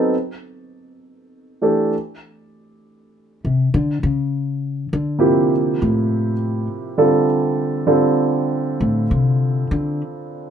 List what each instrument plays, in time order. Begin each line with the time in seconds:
Already playing: grand piano F#3 B3 C4 D#4 A4
1.62 grand piano E3 A3 D4 G4 A4
3.45 upright bass C3
3.74 upright bass D3
4.03 upright bass C#3
4.93 upright bass D3
5.19 grand piano C3 F3 A#3 E4 G4
5.82 upright bass A2
6.98 grand piano D3 G3 C4 F4 A4
7.87 grand piano D3 G3 C4 F4 A4
8.81 upright bass A2
9.11 upright bass C3
9.71 upright bass D3